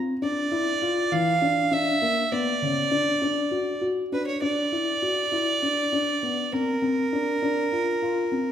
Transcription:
Already playing: felt piano C4
0.22 felt piano D4, fiddle D5
0.52 felt piano E4
0.82 felt piano F4
1.12 felt piano E3, fiddle F5
1.42 felt piano D4
1.71 felt piano D4, fiddle E5
2.02 felt piano A#3
2.32 felt piano B3, fiddle D5
2.62 felt piano C#3
2.91 felt piano D4
3.22 felt piano D4
3.51 felt piano F#4
3.81 felt piano F#4
4.12 felt piano D4, fiddle B4
4.27 fiddle C#5
4.42 felt piano D4, fiddle D5
4.72 felt piano E4
5.02 felt piano F#4
5.32 felt piano E4
5.62 felt piano D4
5.93 felt piano D4
6.23 felt piano B3
6.52 felt piano C4, fiddle A#4
6.82 felt piano C4
7.13 felt piano D4
7.42 felt piano D4
7.72 felt piano F4
8.02 felt piano F4
8.32 felt piano C4

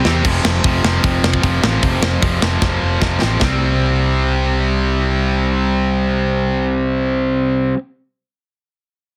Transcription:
Already playing: distorted electric guitar C3 G3 C4
0.03 picked electric bass E2, distorted electric guitar G3 C4, snare
0.07 distorted electric guitar C3
0.24 picked electric bass F1, distorted electric guitar F2 C3 F3, kick, crash
0.45 picked electric bass F1, snare
0.64 picked electric bass F1, distorted electric guitar F2 C3 F3, kick, open hi-hat
0.83 picked electric bass F1, distorted electric guitar F2 C3 F3, snare
1.03 picked electric bass F1, distorted electric guitar F2 C3 F3, kick, open hi-hat
1.23 picked electric bass F1, snare
1.33 kick
1.42 picked electric bass F1, distorted electric guitar F2 C3 F3, kick, open hi-hat
1.63 picked electric bass A1, distorted electric guitar F2 C3 F3, snare
1.82 picked electric bass F1, distorted electric guitar F2 C3 F3, kick, open hi-hat
2.02 picked electric bass F1, snare
2.22 picked electric bass F1, distorted electric guitar F2 C3 F3, kick, open hi-hat
2.42 picked electric bass F1, distorted electric guitar F2 C3 F3, snare
2.62 picked electric bass F1, distorted electric guitar F2 C3 F3, kick, snare
2.83 picked electric bass F1
3.01 picked electric bass F1, distorted electric guitar F2 C3 F3, kick, snare
3.21 picked electric bass A1, distorted electric guitar F2 C3 F3, snare
3.40 picked electric bass C2, distorted electric guitar C3 G3 C4, kick, snare

